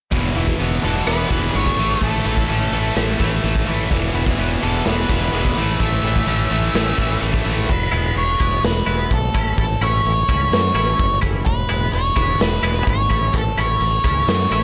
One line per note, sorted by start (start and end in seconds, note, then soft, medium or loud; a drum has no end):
0.11 0.30 E1 medium
0.11 0.35 E2 medium
0.11 1.30 E2 medium
0.11 0.35 B2 medium
0.11 0.37 E3 medium
0.11 kick medium
0.11 open hi-hat soft
0.35 0.54 E1 medium
0.35 0.59 E2 medium
0.35 0.60 B2 medium
0.35 1.30 E3 medium
0.35 0.61 E3 medium
0.48 kick medium
0.59 0.78 E1 medium
0.59 0.82 E2 medium
0.59 0.84 B2 medium
0.59 0.85 E3 medium
0.59 1.06 B3 medium
0.59 open hi-hat soft
0.82 1.02 E1 medium
0.82 1.06 E2 medium
0.82 1.06 B2 medium
0.82 1.08 E3 medium
0.82 1.52 G#3 medium
0.82 1.07 A4 medium
1.06 1.25 E1 medium
1.06 1.29 E2 medium
1.06 1.30 B2 medium
1.06 1.31 E3 medium
1.06 1.78 B3 medium
1.06 1.51 B4 medium
1.06 cross-stick medium
1.06 open hi-hat soft
1.30 1.49 E1 medium
1.30 1.53 E2 medium
1.30 1.53 B2 medium
1.30 2.25 E3 medium
1.30 1.55 E3 medium
1.30 kick medium
1.53 1.73 G#1 medium
1.53 1.76 E2 medium
1.53 1.76 B2 medium
1.53 1.78 E3 medium
1.53 1.77 G#3 medium
1.53 1.99 C#5 medium
1.53 open hi-hat soft
1.66 kick medium
1.77 1.96 A1 medium
1.77 2.00 A2 medium
1.77 2.02 E3 medium
1.77 2.02 A3 medium
2.01 2.20 A1 medium
2.01 2.24 A2 medium
2.01 3.20 A2 medium
2.01 2.26 E3 medium
2.01 2.26 A3 medium
2.01 2.93 A4 medium
2.01 kick medium
2.01 open hi-hat soft
2.25 2.44 A1 medium
2.25 2.48 A2 medium
2.25 3.19 E3 medium
2.25 2.49 E3 medium
2.25 2.49 A3 medium
2.37 kick medium
2.48 2.67 A1 medium
2.48 2.71 A2 medium
2.48 2.72 E3 medium
2.48 2.73 A3 medium
2.48 2.95 C#4 medium
2.48 open hi-hat soft
2.72 2.90 A1 medium
2.72 2.94 A2 medium
2.72 2.95 E3 medium
2.72 3.43 A3 medium
2.72 2.95 A3 loud
2.95 3.14 A1 medium
2.95 3.17 A2 medium
2.95 3.19 E3 medium
2.95 3.19 A3 medium
2.95 3.91 C#4 medium
2.95 snare medium
2.95 open hi-hat soft
3.18 3.38 A1 medium
3.18 3.42 A2 medium
3.18 3.43 E3 medium
3.18 3.68 E3 medium
3.18 3.43 A3 medium
3.18 kick medium
3.43 3.62 A1 medium
3.43 3.65 A2 medium
3.43 3.67 E3 medium
3.43 3.91 A3 medium
3.43 3.67 A3 medium
3.43 open hi-hat soft
3.56 kick medium
3.66 3.86 A1 medium
3.66 3.89 A2 medium
3.66 3.91 E3 medium
3.66 4.15 E3 medium
3.66 3.90 A3 medium
3.89 4.09 E1 medium
3.89 4.13 E2 medium
3.89 5.09 E2 medium
3.89 4.14 B2 medium
3.89 4.15 E3 medium
3.89 kick medium
3.89 open hi-hat soft
4.14 4.33 E1 medium
4.14 4.36 E2 medium
4.14 4.37 B2 medium
4.14 5.10 E3 medium
4.14 4.38 E3 medium
4.26 kick medium
4.38 4.57 E1 medium
4.38 4.60 E2 medium
4.38 4.61 B2 medium
4.38 4.62 E3 medium
4.38 4.86 B3 medium
4.38 open hi-hat soft
4.61 4.81 E1 medium
4.61 4.84 E2 medium
4.61 4.85 B2 medium
4.61 4.86 E3 medium
4.61 5.33 G#3 medium
4.61 4.87 A4 medium
4.85 5.04 E1 medium
4.85 5.08 E2 medium
4.85 5.08 B2 medium
4.85 5.10 E3 medium
4.85 5.57 B3 medium
4.85 5.83 B4 medium
4.85 snare medium
4.85 open hi-hat soft
5.09 5.28 E1 medium
5.09 5.31 E2 medium
5.09 5.31 B2 medium
5.09 6.04 E3 medium
5.09 5.33 E3 medium
5.09 kick medium
5.32 5.51 E1 medium
5.32 5.55 E2 medium
5.32 5.55 B2 medium
5.32 5.56 E3 medium
5.32 5.57 G#3 medium
5.32 open hi-hat soft
5.45 kick medium
5.56 5.75 A1 medium
5.56 5.79 A2 medium
5.56 5.80 E3 medium
5.56 5.80 A3 medium
5.80 5.98 A1 medium
5.80 6.02 A2 medium
5.80 6.98 A2 medium
5.80 6.04 E3 medium
5.80 6.04 A3 medium
5.80 7.18 E5 medium
5.80 kick medium
5.80 open hi-hat soft
6.03 6.22 A1 medium
6.03 6.25 A2 medium
6.03 6.97 E3 medium
6.03 6.26 E3 medium
6.03 6.26 A3 medium
6.16 kick medium
6.26 6.45 A1 medium
6.26 6.49 A2 medium
6.26 6.50 E3 medium
6.26 6.50 A3 medium
6.26 6.74 C#4 medium
6.26 open hi-hat soft
6.50 6.69 A1 medium
6.50 6.73 A2 medium
6.50 6.74 E3 medium
6.50 7.20 A3 medium
6.50 6.74 A3 loud
6.74 6.93 A1 medium
6.74 6.95 A2 medium
6.74 6.97 E3 medium
6.74 6.97 A3 medium
6.74 7.69 C#4 medium
6.74 snare medium
6.74 open hi-hat soft
6.96 7.17 A1 medium
6.96 7.19 A2 medium
6.96 7.20 E3 medium
6.96 7.44 E3 medium
6.96 7.21 A3 medium
6.96 kick medium
7.20 7.40 A1 medium
7.20 7.44 A2 medium
7.20 7.44 E3 medium
7.20 7.69 A3 medium
7.20 7.45 A3 medium
7.20 open hi-hat soft
7.34 kick medium
7.45 7.64 A1 medium
7.45 7.67 A2 medium
7.45 7.67 E3 medium
7.45 7.69 E3 medium
7.45 7.68 A3 medium
7.70 7.88 E1 medium
7.70 8.17 B4 medium
7.70 kick loud
7.70 crash medium
7.91 8.11 E1 medium
7.91 8.23 E3 medium
7.91 8.23 G#3 medium
7.91 8.23 B3 medium
7.91 8.23 E4 medium
7.91 open hi-hat soft
8.16 8.34 E1 medium
8.16 8.65 C#5 medium
8.16 open hi-hat medium
8.40 8.58 E1 medium
8.40 8.71 E3 medium
8.40 8.71 G#3 medium
8.40 8.71 B3 medium
8.40 8.70 E4 medium
8.40 kick medium
8.40 open hi-hat soft
8.63 8.81 E1 medium
8.63 9.13 B4 medium
8.63 snare medium
8.63 open hi-hat medium
8.86 9.05 E1 medium
8.86 9.18 E3 medium
8.86 9.18 G#3 medium
8.86 9.18 B3 medium
8.86 9.17 E4 medium
8.86 open hi-hat soft
9.11 9.29 B1 medium
9.11 9.55 A4 medium
9.11 kick medium
9.11 open hi-hat medium
9.34 9.52 A1 medium
9.34 9.65 E3 medium
9.34 9.65 A3 medium
9.34 9.65 C#4 medium
9.34 9.65 E4 medium
9.34 kick medium
9.34 open hi-hat soft
9.58 9.76 A1 medium
9.58 9.82 A4 medium
9.58 kick loud
9.58 open hi-hat medium
9.81 9.99 A1 medium
9.81 10.12 E3 medium
9.81 10.12 A3 medium
9.81 10.12 C#4 medium
9.81 10.12 E4 medium
9.81 11.19 C#5 medium
9.81 open hi-hat soft
10.05 10.23 A1 medium
10.05 open hi-hat medium
10.29 10.47 C#2 medium
10.29 10.60 E3 medium
10.29 10.59 A3 medium
10.29 10.59 C#4 medium
10.29 10.59 E4 medium
10.29 kick medium
10.29 open hi-hat soft
10.51 10.70 F#2 medium
10.51 snare medium
10.51 open hi-hat medium
10.74 10.93 A1 medium
10.74 11.06 E3 medium
10.74 11.06 A3 medium
10.74 11.06 C#4 medium
10.74 11.06 E4 medium
10.74 open hi-hat soft
10.99 11.17 F#1 medium
10.99 kick medium
10.99 open hi-hat medium
11.21 11.41 F#1 medium
11.21 11.46 E3 medium
11.21 11.46 A3 medium
11.21 11.45 C#4 medium
11.21 11.45 E4 medium
11.21 kick medium
11.21 open hi-hat soft
11.46 11.64 E1 medium
11.46 11.93 B4 medium
11.46 kick medium
11.46 open hi-hat medium
11.69 11.88 E1 medium
11.69 12.00 E3 medium
11.69 12.00 G#3 medium
11.69 12.00 B3 medium
11.69 12.00 E4 medium
11.69 open hi-hat soft
11.93 12.11 E1 medium
11.93 12.42 C#5 loud
11.93 open hi-hat medium
12.16 12.35 E1 medium
12.16 12.47 E3 medium
12.16 12.47 G#3 medium
12.16 12.47 B3 medium
12.16 12.47 E4 medium
12.16 kick medium
12.16 open hi-hat soft
12.40 12.58 E1 medium
12.40 12.85 B4 medium
12.40 snare medium
12.40 open hi-hat medium
12.63 12.81 E1 medium
12.63 12.94 E3 medium
12.63 12.94 G#3 medium
12.63 12.94 B3 medium
12.63 12.94 E4 medium
12.63 open hi-hat soft
12.87 13.05 G#1 medium
12.87 13.36 C#5 loud
12.87 kick medium
12.87 open hi-hat medium
13.10 13.29 A1 medium
13.10 13.41 E3 medium
13.10 13.41 A3 medium
13.10 13.41 C#4 medium
13.10 13.41 E4 medium
13.10 kick medium
13.10 open hi-hat soft
13.33 13.52 A1 medium
13.33 13.59 A4 medium
13.33 kick loud
13.33 open hi-hat medium
13.57 13.76 A1 medium
13.57 13.89 E3 medium
13.57 13.89 A3 medium
13.57 13.88 C#4 medium
13.57 13.88 E4 medium
13.57 14.63 C#5 medium
13.57 open hi-hat soft
13.81 13.99 A1 medium
13.81 open hi-hat medium
14.04 14.23 C#2 medium
14.04 14.35 E3 medium
14.04 14.35 A3 medium
14.04 14.35 C#4 medium
14.04 14.35 E4 medium
14.04 kick medium
14.04 open hi-hat soft
14.27 14.46 F#2 medium
14.27 snare loud
14.27 open hi-hat medium
14.51 14.63 A1 medium
14.51 14.63 E3 medium
14.51 14.63 A3 medium
14.51 14.63 C#4 medium
14.51 14.63 E4 medium
14.51 open hi-hat soft